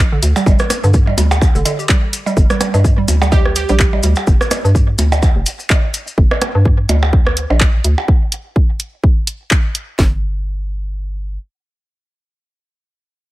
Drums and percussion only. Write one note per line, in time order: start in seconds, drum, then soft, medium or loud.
0.23 closed hi-hat loud
0.23 maracas medium
0.36 percussion blips medium
0.36 maracas soft
0.46 kick loud
0.46 percussion blips medium
0.46 maracas medium
0.59 cross-stick medium
0.59 maracas soft
0.70 cross-stick medium
0.70 closed hi-hat loud
0.70 percussion blips medium
0.70 maracas loud
0.84 maracas soft
0.94 kick loud
0.94 maracas medium
1.07 percussion blips medium
1.18 closed hi-hat loud
1.18 percussion blips medium
1.18 maracas medium
1.31 percussion blips medium
1.31 maracas soft
1.42 kick loud
1.42 percussion blips medium
1.42 maracas medium
1.55 maracas soft
1.65 closed hi-hat loud
1.65 percussion blips medium
1.65 maracas medium
1.79 maracas soft
1.89 kick loud
1.89 clap loud
1.89 maracas medium
2.13 closed hi-hat loud
2.13 maracas medium
2.26 percussion blips medium
2.26 maracas soft
2.37 kick loud
2.37 maracas medium
2.50 cross-stick medium
2.50 maracas soft
2.61 cross-stick medium
2.61 closed hi-hat medium
2.61 percussion blips medium
2.61 maracas medium
2.74 percussion blips medium
2.74 maracas soft
2.84 kick loud
2.84 maracas medium
3.08 closed hi-hat medium
3.08 percussion blips medium
3.08 maracas loud
3.22 percussion blips medium
3.22 maracas soft
3.32 kick loud
3.32 percussion blips medium
3.32 maracas soft
3.46 cross-stick medium
3.56 closed hi-hat loud
3.56 maracas loud
3.69 maracas soft
3.80 kick loud
3.80 clap loud
3.80 maracas medium
3.93 percussion blips medium
4.03 closed hi-hat medium
4.03 maracas medium
4.16 percussion blips medium
4.16 maracas soft
4.27 kick loud
4.27 maracas medium
4.41 cross-stick medium
4.41 maracas soft
4.51 cross-stick medium
4.51 closed hi-hat medium
4.51 percussion blips medium
4.51 maracas medium
4.65 maracas soft
4.75 kick loud
4.75 maracas medium
4.98 closed hi-hat medium
4.98 percussion blips medium
4.98 maracas medium
5.12 percussion blips medium
5.12 maracas soft
5.22 kick loud
5.22 percussion blips medium
5.22 maracas medium
5.46 closed hi-hat medium
5.46 maracas medium
5.59 maracas soft
5.70 kick loud
5.70 clap loud
5.70 percussion blips medium
5.70 maracas soft
5.94 closed hi-hat medium
5.94 maracas medium
6.07 maracas soft
6.18 kick loud
6.31 cross-stick medium
6.31 percussion blips medium
6.42 cross-stick medium
6.42 closed hi-hat medium
6.42 percussion blips medium
6.42 percussion blips soft
6.65 kick loud
6.89 closed hi-hat medium
6.89 percussion blips medium
7.03 percussion blips medium
7.13 kick loud
7.27 cross-stick medium
7.37 closed hi-hat medium
7.50 percussion blips medium
7.61 kick loud
7.61 clap loud
7.84 closed hi-hat medium
7.98 percussion blips medium
8.08 kick loud
8.32 closed hi-hat medium
8.56 kick loud
8.80 closed hi-hat medium
9.04 kick loud
9.27 closed hi-hat medium
9.51 kick loud
9.51 clap loud
9.75 closed hi-hat medium
9.99 kick loud
9.99 snare loud